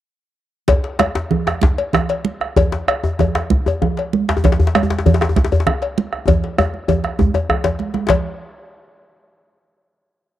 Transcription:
0.68 bombo rim, bombo low, cowbell, djembe slap, low conga, djembe bass
0.84 djembe slap
0.99 bombo rim, cowbell, djembe slap, high conga, djembe tone
1.15 bombo rim, djembe slap
1.31 bombo rim, low conga, djembe bass
1.47 bombo rim, djembe slap, djembe tone
1.61 bombo rim, bombo low, djembe slap, high conga
1.78 cowbell, djembe slap, high conga
1.93 bombo rim, djembe slap, djembe tone, low conga, djembe bass
2.09 bombo rim, cowbell, djembe slap
2.25 high conga
2.41 bombo rim, djembe slap, djembe tone
2.56 bombo rim, bombo low, cowbell, djembe tone, low conga, djembe bass
2.72 djembe slap
2.88 bombo rim, cowbell, djembe slap, djembe tone
3.04 bombo rim, djembe tone
3.19 bombo rim, cowbell, djembe tone, low conga, djembe bass
3.35 bombo rim, djembe slap, djembe tone
3.50 bombo rim, bombo low, high conga
3.66 cowbell, djembe slap, djembe tone, high conga
3.82 djembe tone, djembe bass, low conga
3.97 bombo rim, cowbell, djembe slap
4.13 high conga
4.28 bombo rim, djembe slap, djembe tone
4.37 djembe tone
4.44 bombo rim, bombo low, cowbell, djembe slap, low conga, djembe bass
4.52 djembe slap
4.60 djembe slap, djembe bass
4.67 djembe slap
4.75 bombo rim, cowbell, djembe slap, high conga, djembe tone
4.83 djembe tone
4.90 bombo rim, djembe slap
4.98 djembe slap
5.06 bombo rim, cowbell, djembe bass, low conga
5.14 djembe slap
5.21 bombo rim, djembe slap, djembe tone
5.29 djembe tone
5.36 bombo rim, bombo low, djembe slap, high conga
5.44 djembe slap
5.51 cowbell, djembe slap, high conga, djembe bass
5.60 djembe slap
5.66 bombo rim, djembe slap, djembe tone, djembe bass, low conga
5.82 bombo rim, cowbell, djembe slap
5.98 high conga
6.12 bombo rim, djembe slap, djembe tone
6.27 bombo rim, bombo low, cowbell, djembe slap, djembe tone, djembe bass, low conga
6.44 djembe slap
6.58 bombo rim, cowbell, djembe slap, djembe tone, high conga
6.74 high conga
6.88 cowbell, djembe slap, djembe tone, djembe bass, low conga
7.04 bombo rim, djembe slap, high conga, djembe tone
7.19 bombo rim, bombo low, high conga, djembe tone
7.34 bombo rim, cowbell, djembe tone
7.49 bombo rim, djembe tone, djembe bass, low conga
7.64 bombo rim, cowbell, djembe slap, djembe bass, low conga
7.79 djembe slap, high conga
7.94 djembe slap, high conga
8.09 bombo low, cowbell, djembe slap, djembe bass, low conga

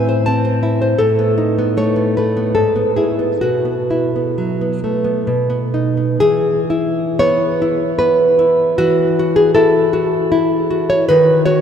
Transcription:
Already playing: A2 C4 B4 G#5
0.09 C5
0.26 C4 A5
0.45 C5
0.63 E4
0.82 C5
0.98 A2 A4
1.19 B3
1.38 D#4
1.59 B3
1.77 A3 C#5
1.96 B3
2.17 A3 B4
2.37 B3
2.55 G#2 A4
2.76 B3
2.96 E4 G#4
3.19 B3
3.41 B2 F#4
3.65 B3
3.91 E4
4.16 B3
4.38 F#3
4.61 B3
4.84 A3
5.04 B3
5.27 B2
5.50 B3
5.74 D#4
5.97 B3
6.20 E3 G#4
6.70 E4
7.19 B3 C#5
7.62 E4
7.99 B3 B4
8.39 E4
8.78 E3 F#4
9.19 F#4
9.36 G#4
9.55 E4 A4
9.93 F#4
10.32 E4
10.71 F#4
10.90 C#5
11.09 D#3 B4
11.45 F#4 C#5

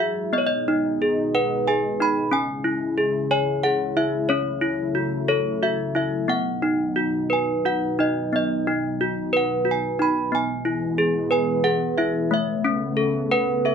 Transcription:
Already playing: F#3 G#3 E4 F#4 G#4
0.00 E5
0.30 B2 G#3 B3 D#4 D#5
0.38 C#5
0.47 D#5
0.68 D#4
1.02 G#4
1.35 B4 F#5
1.68 G#4 G#5
2.00 D#4 B5
2.31 C#3 C#4 E4 G#5
2.64 E4
2.98 G#4
3.31 C#5 G#5
3.63 G#4 F#5
3.97 E4 E5
4.29 F#3 A3 C#4 C#5
4.61 E4
4.95 F#4
5.28 A4 C#5
5.62 F#4 E5
5.95 E4 E5
6.28 B2 B3 D#4 F#5
6.62 D#4
6.96 F#4
7.30 B4 G#5
7.65 F#4 F#5
7.99 D#4 D#5
8.33 B3 D#5
8.67 D#4
9.01 F#4
9.33 B4 F#5
9.65 F#4
9.71 G#5
9.99 D#4 B5
10.32 E3 G#3 B3 G#5
10.65 E4
10.98 G#4
11.31 B4 G#5
11.64 G#4 F#5
11.98 E4 E5
12.29 C#3 A3 B3
12.34 E5
12.64 C#4
12.97 A4
13.31 B4 F#5
13.65 A4 E5

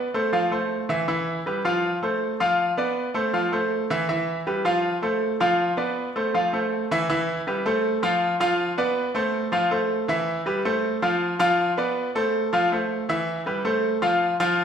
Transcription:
0.14 A3 A4 C5
0.33 F3 F4 F5
0.52 A3 A4 C5
0.89 E3 E4 E5
1.08 E3 E4 E5
1.46 G3 G4 B4
1.65 F3 F4 F5
2.03 A3 A4 C5
2.40 F3 F4 F5
2.77 B3 B4 D5
3.14 A3 A4 C5
3.33 F3 F4 F5
3.52 A3 A4 C5
3.90 E3 E4 E5
4.09 E3 E4 E5
4.47 G3 G4 B4
4.65 F3 F4 F5
5.02 A3 A4 C5
5.40 F3 F4 F5
5.77 B3 B4 D5
6.16 A3 A4 C5
6.34 F3 F4 F5
6.53 A3 A4 C5
6.91 E3 E4 E5
7.09 E3 E4 E5
7.47 G3 G4 B4
7.66 A3 A4 C5
8.03 F3 F4 F5
8.40 F3 F4 F5
8.78 B3 B4 D5
9.15 A3 A4 C5
9.52 F3 F4 F5
9.71 A3 A4 C5
10.08 E3 E4 E5
10.46 G3 G4 B4
10.65 A3 A4 C5
11.02 F3 F4 F5
11.39 F3 F4 F5
11.77 B3 B4 D5
12.15 A3 A4 C5
12.53 F3 F4 F5
12.72 A3 A4 C5
13.09 E3 E4 E5
13.46 G3 G4 B4
13.65 A3 A4 C5
14.02 F3 F4 F5
14.40 F3 F4 F5

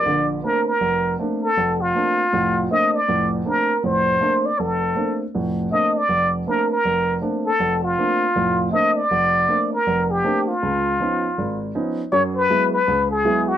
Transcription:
Already playing: A#4 D5
0.06 A#1 D3
0.44 A3 A#3 C4 D4 A#4
0.68 A#4
0.81 F1
1.19 A3 A#3 C4 D4
1.42 A4
1.57 F1
1.81 F4
1.95 A3 A#3 C4 D4
2.33 F1 A2
2.71 A3 A#3 C4 D4 D#5
2.95 D5
3.08 F1 A2
3.45 A3 A#3 C4 D4 A#4
3.84 F1 A2 C5
4.21 A3 A#3 C4 D4
4.46 D5
4.59 F1 A4
4.96 A3 A#3 C4 D4
5.35 F1 A2
5.72 A3 A#3 C4 D4 D#5
5.97 D5
6.09 F1
6.47 A3 A#3 C4 D4 A#4
6.72 A#4
6.85 F1
7.22 A3 A#3 C4 D4
7.45 A4
7.60 F1
7.83 F4
7.98 A3 A#3 C4 D4
8.36 F1 A2
8.72 A3 A#3 C4 D4 D#5
8.96 D5
9.11 F1
9.48 A3 A#3 C4 D4
9.73 A#4
9.87 F1
10.11 G4
10.24 A3 A#3 C4 D4
10.48 F4
10.63 C#2
11.00 F3 B3 C#4 D#4
11.38 G#1
11.75 F3 B3 C#4 D#4
12.12 F#2 F#3 C#5
12.36 B4
12.50 F#3 G#3 B3 E4
12.73 B4
12.88 C#2
13.11 G#4
13.25 F#3 G#3 B3 E4
13.48 F#4

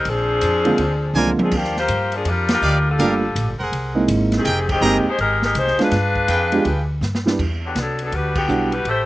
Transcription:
0.05 A#1 F3 C4 D4 G#4, kick, ride
0.41 F2, kick, hi-hat pedal, ride
0.65 D3 G#3 A#3 C4 F4, ride
0.78 D2, kick, ride
1.14 C2 D3 G#3 A#3 C4 F4 A#4 C5 D5 G#5, hi-hat pedal, high tom
1.27 high tom
1.38 muted upright bass stroke, high tom
1.42 F3 C4 D4 G#4
1.51 D#2 F3, kick, crash
1.56 A#3 D4 G4
1.64 snare
1.76 A#3 F4 G4 C5, snare
1.88 G2, kick, hi-hat pedal, ride
2.12 F3 A#3 D4 G#4, ride
2.25 F2 G3 D4 F4 A#4, kick, ride
2.49 snare, ride
2.53 G3 D4 F4 A#4
2.62 D2 G4 D5 D#5 F5, hi-hat pedal
2.89 G3 D4 F4 A4
2.99 G1 G3 A3 A#3 D4 F4 G4 A#4 D5 F5, kick, ride
3.35 A1, kick, hi-hat pedal, ride
3.48 G1
3.59 F1 G#4 A#4 C5 F#5
3.72 C2, kick, ride
3.94 G#3 A#3 C4 D#4 E4
4.08 G#1, kick, hi-hat pedal, ride
4.32 snare, ride
4.37 D#3 C4 G4 G#4
4.45 F1 G#4 A#4 D#5 G5, kick, ride
4.69 D#3 G#3 C4 G4, kick, crash
4.81 G1 G#3 A#3 C4 D#4 G4 G#4 A#4 D#5 A#5, hi-hat pedal
5.05 G#3 D#4 G4, muted upright bass stroke
5.09 C5
5.18 G#1 G#3 D#4 G4 A#4, kick, ride
5.42 G#3 D#4 G4 A#4, snare
5.55 C2 G#3 D#4 G4 C5, kick, hi-hat pedal, ride
5.67 snare
5.78 G#3 B3 D4 F4 G#4 B4, muted upright bass stroke, snare, ride
5.91 G2, kick, snare, ride
6.16 kick
6.28 F2 G#4 B4 F5 G5, kick, hi-hat pedal, ride
6.52 G#3 B3 D4 F4 G4, ride
6.65 D2, kick, ride
7.01 G2, snare, hi-hat pedal
7.15 snare
7.26 G3 B3 D4 E4 G4, snare
7.39 E2, kick, crash
7.65 D3 F#3 B3 G4
7.75 C2 F#3 B3 D4 A4, kick, snare, hi-hat pedal, ride
7.99 F#3 B3 D4 A4, ride
8.12 D2 G3 D4 F#4 B4, kick, ride
8.35 D3 B3 F#4 G4, kick, crash
8.48 B1 G3 B3 D4 E4 F#4, hi-hat pedal
8.72 G3 D4 F#4 B4, ride
8.85 A1 A3 E4 G4 C5, kick, ride

